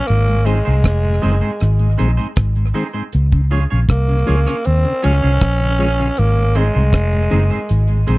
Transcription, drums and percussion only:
0.08 closed hi-hat medium
0.27 closed hi-hat soft
0.46 closed hi-hat medium
0.66 closed hi-hat soft
0.84 kick medium
0.84 cross-stick loud
0.84 closed hi-hat medium
1.04 closed hi-hat soft
1.23 closed hi-hat medium
1.60 cross-stick medium
1.60 closed hi-hat medium
1.79 closed hi-hat soft
1.99 closed hi-hat medium
2.18 closed hi-hat soft
2.36 kick loud
2.36 cross-stick loud
2.36 closed hi-hat medium
2.55 closed hi-hat soft
2.75 open hi-hat soft
2.94 closed hi-hat soft
3.12 closed hi-hat medium
3.32 kick medium
3.32 closed hi-hat soft
3.51 closed hi-hat medium
3.89 kick loud
3.89 cross-stick loud
3.89 closed hi-hat medium
4.08 closed hi-hat soft
4.28 closed hi-hat medium
4.46 cross-stick medium
4.46 closed hi-hat soft
4.65 closed hi-hat medium
4.84 closed hi-hat soft
5.04 closed hi-hat medium
5.41 kick loud
5.41 cross-stick loud
5.41 closed hi-hat medium
5.60 closed hi-hat soft
5.79 closed hi-hat medium
6.17 closed hi-hat medium
6.36 closed hi-hat soft
6.55 closed hi-hat medium
6.93 kick loud
6.93 cross-stick loud
6.93 closed hi-hat medium
7.13 closed hi-hat soft
7.32 closed hi-hat medium
7.50 closed hi-hat soft
7.69 closed hi-hat medium
7.88 closed hi-hat soft
8.08 closed hi-hat medium

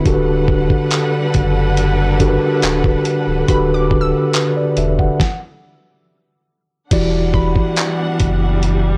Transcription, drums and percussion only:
0.06 kick loud
0.06 closed hi-hat medium
0.48 kick medium
0.70 kick loud
0.91 clap loud
0.91 closed hi-hat medium
1.34 kick loud
1.34 closed hi-hat medium
1.77 closed hi-hat medium
2.20 kick medium
2.20 closed hi-hat medium
2.62 clap loud
2.62 closed hi-hat medium
2.84 kick loud
3.05 closed hi-hat medium
3.48 kick loud
3.48 closed hi-hat medium
3.91 kick medium
4.33 clap loud
4.33 closed hi-hat medium
4.77 closed hi-hat medium
4.99 kick medium
5.20 kick loud
5.20 snare medium
6.91 kick loud
6.91 closed hi-hat medium
6.91 crash loud
7.34 kick medium
7.56 kick loud
7.76 clap loud
7.76 closed hi-hat medium
8.20 kick loud
8.20 closed hi-hat medium
8.63 closed hi-hat medium

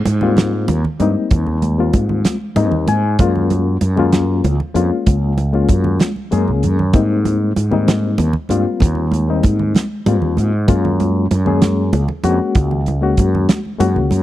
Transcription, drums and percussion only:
0.05 closed hi-hat medium
0.05 muted conga medium
0.21 low conga medium
0.37 snare loud
0.37 closed hi-hat medium
0.37 high conga medium
0.37 low conga soft
0.68 closed hi-hat medium
0.68 muted conga medium
0.85 low conga medium
1.00 closed hi-hat medium
1.00 high conga medium
1.31 kick loud
1.31 closed hi-hat medium
1.31 muted conga medium
1.47 low conga medium
1.62 closed hi-hat medium
1.62 high conga medium
1.93 kick medium
1.93 closed hi-hat medium
1.93 muted conga medium
2.09 low conga medium
2.25 snare loud
2.25 closed hi-hat medium
2.25 high conga loud
2.25 low conga soft
2.56 closed hi-hat medium
2.56 muted conga loud
2.72 low conga medium
2.88 closed hi-hat medium
2.88 high conga medium
3.19 kick loud
3.19 closed hi-hat medium
3.19 muted conga loud
3.36 low conga medium
3.50 closed hi-hat medium
3.50 high conga medium
3.81 closed hi-hat medium
3.81 muted conga medium
3.97 low conga medium
4.13 snare loud
4.13 closed hi-hat medium
4.13 high conga medium
4.13 low conga soft
4.44 closed hi-hat medium
4.44 muted conga medium
4.60 low conga medium
4.76 closed hi-hat medium
4.76 high conga medium
5.07 kick medium
5.07 closed hi-hat medium
5.07 muted conga medium
5.07 low conga soft
5.38 closed hi-hat medium
5.38 high conga medium
5.54 low conga soft
5.69 kick medium
5.69 closed hi-hat medium
5.69 muted conga medium
5.69 low conga soft
5.84 low conga medium
6.00 snare loud
6.00 closed hi-hat medium
6.00 high conga medium
6.16 high conga soft
6.32 closed hi-hat medium
6.32 high conga medium
6.48 high conga medium
6.63 closed hi-hat medium
6.63 low conga medium
6.79 low conga medium
6.93 kick loud
6.93 closed hi-hat medium
6.93 muted conga medium
7.25 closed hi-hat soft
7.25 high conga loud
7.56 closed hi-hat medium
7.56 muted conga medium
7.72 low conga medium
7.88 snare loud
7.88 closed hi-hat medium
7.88 high conga medium
7.88 low conga soft
8.18 closed hi-hat medium
8.18 muted conga medium
8.33 low conga medium
8.49 closed hi-hat medium
8.49 high conga medium
8.80 kick medium
8.80 closed hi-hat medium
8.80 muted conga medium
8.95 low conga medium
9.11 closed hi-hat medium
9.11 high conga medium
9.43 kick medium
9.43 closed hi-hat medium
9.43 muted conga medium
9.59 low conga medium
9.75 snare loud
9.75 closed hi-hat medium
9.75 high conga medium
9.75 low conga soft
10.06 closed hi-hat medium
10.06 muted conga medium
10.22 low conga medium
10.37 closed hi-hat medium
10.37 high conga medium
10.68 kick medium
10.68 closed hi-hat medium
10.68 muted conga medium
10.85 low conga medium
11.00 closed hi-hat medium
11.00 high conga loud
11.31 closed hi-hat medium
11.31 muted conga medium
11.46 low conga medium
11.62 snare loud
11.62 closed hi-hat medium
11.62 high conga medium
11.62 low conga soft
11.93 closed hi-hat medium
11.93 muted conga loud
12.08 low conga medium
12.24 closed hi-hat medium
12.24 high conga medium
12.55 kick medium
12.55 closed hi-hat medium
12.55 muted conga medium
12.71 low conga medium
12.86 closed hi-hat medium
12.86 high conga medium
12.86 low conga soft
13.17 kick medium
13.17 closed hi-hat medium
13.17 muted conga medium
13.35 low conga medium
13.49 snare loud
13.49 closed hi-hat medium
13.49 high conga loud
13.65 low conga soft
13.80 closed hi-hat medium
13.80 muted conga medium
13.80 low conga soft
13.96 low conga medium
14.11 closed hi-hat medium
14.11 high conga medium

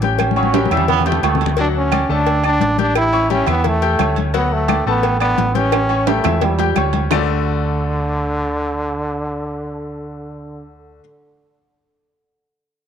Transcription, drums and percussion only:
0.02 cowbell medium
0.02 high conga medium
0.19 cowbell loud
0.19 high conga medium
0.19 low agogo loud
0.19 claves medium
0.31 high conga loud
0.36 low agogo medium
0.43 high conga medium
0.54 cowbell medium
0.54 high conga medium
0.54 high timbale loud
0.66 high conga loud
0.71 cowbell medium
0.71 low agogo loud
0.71 claves medium
0.77 low conga loud
0.88 cowbell medium
0.88 low conga loud
0.88 low agogo medium
1.00 low conga medium
1.06 cowbell medium
1.06 low timbale medium
1.12 low conga medium
1.23 cowbell medium
1.23 low timbale medium
1.23 low agogo loud
1.23 claves medium
1.35 low conga loud
1.41 low timbale medium
1.41 low agogo medium
1.46 low conga medium
1.57 cowbell loud
1.57 low agogo medium
1.75 high conga soft
1.92 cowbell medium
1.92 high conga loud
1.92 low agogo loud
1.92 claves medium
2.10 high conga soft
2.26 cowbell loud
2.26 high conga soft
2.26 low agogo loud
2.44 high conga soft
2.44 low agogo loud
2.44 claves medium
2.61 cowbell medium
2.61 high conga medium
2.78 cowbell medium
2.78 high conga medium
2.95 cowbell loud
2.95 high conga soft
2.95 low agogo loud
2.95 claves medium
3.13 high conga soft
3.13 low agogo medium
3.30 cowbell medium
3.30 high conga medium
3.47 cowbell medium
3.47 high conga soft
3.47 low conga medium
3.47 low agogo loud
3.47 claves medium
3.64 cowbell loud
3.64 high conga soft
3.64 low conga medium
3.64 low agogo medium
3.82 cowbell medium
3.82 high conga soft
3.99 cowbell medium
3.99 high conga medium
3.99 low timbale medium
3.99 low agogo loud
3.99 claves medium
4.16 high conga medium
4.16 low agogo medium
4.34 cowbell loud
4.34 high conga soft
4.34 low agogo medium
4.52 high conga soft
4.68 cowbell medium
4.68 high conga loud
4.68 low agogo loud
4.68 claves medium
4.86 high conga soft
5.03 cowbell loud
5.03 high conga soft
5.03 low agogo loud
5.20 high conga soft
5.20 low agogo loud
5.20 claves medium
5.38 cowbell medium
5.38 high conga medium
5.38 low timbale medium
5.55 cowbell medium
5.55 high conga medium
5.72 cowbell loud
5.72 high conga soft
5.72 high timbale medium
5.72 low agogo loud
5.72 claves medium
5.89 high conga soft
5.89 low agogo medium
6.07 cowbell medium
6.07 high conga medium
6.07 high timbale loud
6.24 cowbell medium
6.24 high conga soft
6.24 low conga medium
6.24 low timbale loud
6.24 low agogo loud
6.24 claves medium
6.41 cowbell loud
6.41 high conga soft
6.41 low conga medium
6.41 low timbale loud
6.41 low agogo medium
6.59 cowbell medium
6.59 high conga soft
6.59 low timbale medium
6.76 cowbell medium
6.76 high conga medium
6.76 low agogo loud
6.76 claves medium
6.93 high conga medium
6.93 low timbale medium
6.93 low agogo medium
7.11 low bongo loud
7.11 low conga loud
7.11 low timbale loud
7.11 claves medium

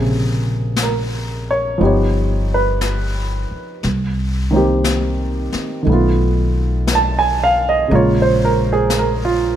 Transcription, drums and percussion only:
0.76 brush sweep soft
0.76 snare soft
0.76 hi-hat pedal medium
1.78 brush sweep soft
2.81 brush sweep soft
2.81 snare soft
2.81 hi-hat pedal medium
3.83 brush sweep soft
3.83 snare soft
4.84 brush sweep soft
4.84 snare soft
4.84 hi-hat pedal medium
5.52 snare soft
5.86 brush sweep soft
6.87 brush sweep soft
6.87 snare soft
6.87 hi-hat pedal medium
7.89 brush sweep soft
8.90 brush sweep soft
8.90 snare soft
8.90 hi-hat pedal medium

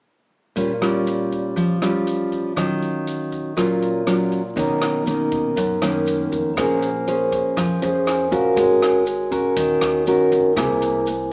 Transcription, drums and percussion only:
0.56 kick soft
0.56 closed hi-hat soft
0.56 shaker medium
0.82 cross-stick medium
0.82 closed hi-hat soft
0.82 shaker soft
1.07 closed hi-hat soft
1.07 shaker soft
1.32 kick soft
1.32 closed hi-hat soft
1.32 shaker soft
1.57 kick soft
1.57 closed hi-hat soft
1.57 shaker soft
1.82 cross-stick medium
1.82 closed hi-hat soft
1.82 shaker soft
2.07 closed hi-hat soft
2.07 shaker medium
2.32 kick soft
2.32 closed hi-hat soft
2.32 shaker soft
2.57 kick medium
2.57 cross-stick medium
2.57 closed hi-hat soft
2.57 shaker medium
2.82 closed hi-hat soft
2.82 shaker soft
3.07 closed hi-hat soft
3.07 shaker soft
3.32 kick soft
3.32 closed hi-hat soft
3.32 shaker soft
3.57 kick soft
3.57 cross-stick medium
3.57 closed hi-hat soft
3.57 shaker medium
3.82 closed hi-hat soft
3.82 shaker soft
4.07 cross-stick soft
4.07 closed hi-hat soft
4.07 shaker medium
4.32 kick soft
4.32 closed hi-hat soft
4.32 shaker soft
4.57 kick medium
4.57 closed hi-hat medium
4.57 shaker medium
4.82 cross-stick medium
4.82 closed hi-hat soft
4.82 shaker soft
5.06 closed hi-hat soft
5.06 shaker medium
5.31 kick medium
5.31 closed hi-hat soft
5.31 shaker soft
5.56 kick medium
5.56 closed hi-hat medium
5.56 shaker soft
5.81 cross-stick medium
5.81 closed hi-hat soft
5.81 shaker soft
6.06 closed hi-hat soft
6.06 shaker medium
6.32 closed hi-hat soft
6.32 shaker soft
6.57 kick medium
6.57 cross-stick medium
6.57 closed hi-hat medium
6.57 shaker medium
6.82 closed hi-hat soft
6.82 shaker soft
7.07 closed hi-hat soft
7.07 shaker medium
7.32 kick medium
7.32 closed hi-hat soft
7.32 shaker soft
7.57 kick medium
7.57 cross-stick medium
7.57 closed hi-hat soft
7.57 shaker medium
7.82 closed hi-hat soft
7.82 shaker soft
8.07 cross-stick medium
8.07 closed hi-hat soft
8.07 shaker medium
8.32 kick soft
8.32 closed hi-hat soft
8.32 shaker soft
8.57 kick medium
8.57 closed hi-hat medium
8.57 shaker medium
8.82 cross-stick medium
8.82 closed hi-hat soft
8.82 shaker soft
9.06 closed hi-hat soft
9.06 shaker medium
9.32 kick medium
9.32 closed hi-hat soft
9.32 shaker soft
9.56 kick medium
9.56 closed hi-hat medium
9.56 shaker medium
9.81 cross-stick medium
9.81 closed hi-hat soft
9.81 shaker soft
10.07 closed hi-hat soft
10.07 shaker medium
10.32 closed hi-hat soft
10.32 shaker soft
10.57 kick medium
10.57 cross-stick medium
10.57 closed hi-hat medium
10.57 shaker medium
10.82 closed hi-hat soft
10.82 shaker soft
11.06 closed hi-hat soft
11.06 shaker medium

